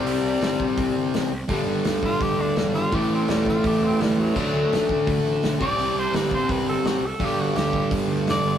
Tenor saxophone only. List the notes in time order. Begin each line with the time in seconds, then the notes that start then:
Already playing: G3
2.06 F4
2.22 G4
2.41 D4
2.58 G3
2.75 F4
2.95 G4
3.15 C4
3.31 G3
3.49 F4
3.67 G4
3.85 C4
4.02 G3
4.19 F#3
5.62 D5
5.99 C5
6.16 B4
6.34 C5
6.51 B4
6.69 A4
6.87 F#4
7.06 A4
7.25 G4
7.40 F#4
7.57 G4
8.30 D5